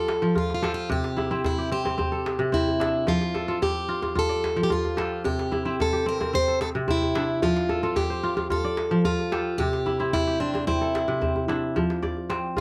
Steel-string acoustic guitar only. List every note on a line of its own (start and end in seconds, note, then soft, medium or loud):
0.00 0.37 A4 medium
0.38 0.53 F4 medium
0.54 0.72 F4 medium
0.74 0.90 F4 medium
0.92 1.41 G4 medium
1.46 1.72 E4 medium
1.72 2.49 G4 medium
2.54 3.08 E4 medium
3.08 3.58 F4 medium
3.63 4.18 G4 medium
4.19 4.62 A4 loud
4.63 4.70 G4 medium
4.72 5.22 F4 medium
5.25 5.75 G4 medium
5.82 6.08 A4 medium
6.09 6.35 A#4 medium
6.35 6.61 C5 loud
6.62 6.69 A4 medium
6.91 7.40 E4 medium
7.43 7.98 F4 medium
7.96 8.47 G4 medium
8.52 9.02 A4 loud
9.05 9.61 F4 medium
9.58 10.13 G4 medium
10.13 10.38 E4 medium
10.40 10.67 D4 medium
10.67 11.44 E4 medium